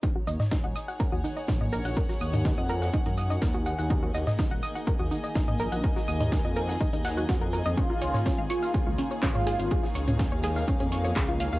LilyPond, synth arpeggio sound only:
\new Staff \with { instrumentName = "Synth arpeggio sound" } { \time 4/4 \key ees \minor \tempo 4 = 124 ees'16 ges'16 ees''16 ees''16 ees'16 ges''16 ees'''16 ges''16 bes'16 ges'16 ees'16 ees''16 ees'16 ees''16 bes'16 ges''16 | bes'16 ges'16 ees'''16 ees'16 ees'16 ees''16 bes'16 ges''16 ees'16 ees'16 ees'''16 ees''16 bes'16 ges'16 ges''16 ges''16 | ees'16 ges'16 ees''16 ees''16 ees'16 ges''16 ees'''16 ges''16 bes'16 ges'16 ees'16 ees''16 ees'16 ees''16 bes'16 ges''16 | bes'16 ges'16 ees'''16 ees'16 ees'16 ees''16 bes'16 ges''16 ees'16 ees'16 ges''16 ges'16 ges'16 bes'16 bes'16 ees''16 |
des'16 f'16 des''16 des''16 des'16 f''16 des'''16 f''16 aes'16 f'16 des'16 des''16 des'16 des''16 aes'16 f''16 | aes'16 f'16 des'''16 des'16 des'16 des''16 aes'16 f''16 des'16 des'16 des'''16 des''16 aes'16 f'16 f''16 f''16 | }